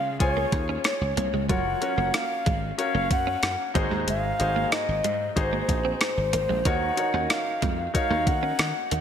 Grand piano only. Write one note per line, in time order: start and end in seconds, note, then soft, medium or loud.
0.00 1.51 C#3 medium
0.00 0.19 F4 medium
0.00 0.20 G#4 medium
0.00 0.20 C#5 medium
0.00 1.51 F5 medium
0.19 1.24 F4 medium
0.19 1.24 G#4 medium
0.19 1.24 C#5 medium
0.19 1.25 G#5 medium
1.49 1.75 F4 medium
1.49 1.75 F#4 medium
1.49 1.76 A#4 medium
1.49 1.76 C#5 medium
1.81 2.59 C#4 medium
1.81 2.60 F#4 medium
1.81 2.60 A#4 medium
1.81 2.60 C#5 medium
2.78 3.75 C#4 medium
2.78 3.73 F#4 medium
2.78 3.75 A#4 medium
2.78 3.76 C#5 medium
3.74 4.68 G#2 medium
3.74 4.27 D#4 medium
3.74 4.27 F#4 medium
3.74 4.27 G#4 medium
3.74 4.27 C5 medium
4.39 5.17 D#4 medium
4.39 5.18 F#4 medium
4.39 5.18 G#4 medium
4.39 5.18 C5 medium
5.36 6.40 D#4 medium
5.36 6.40 F#4 medium
5.36 6.41 G#4 medium
5.36 6.41 C5 medium
6.65 7.58 D#3 medium
6.65 6.91 D#4 medium
6.65 6.92 F#4 medium
6.65 6.92 A#4 medium
6.65 6.92 C#5 medium
6.97 7.75 D#4 medium
6.97 7.76 F#4 medium
6.97 7.76 A#4 medium
6.97 7.76 C#5 medium
7.94 8.98 D#4 medium
7.94 8.98 F#4 medium
7.94 8.98 A#4 medium
7.94 8.99 C#5 medium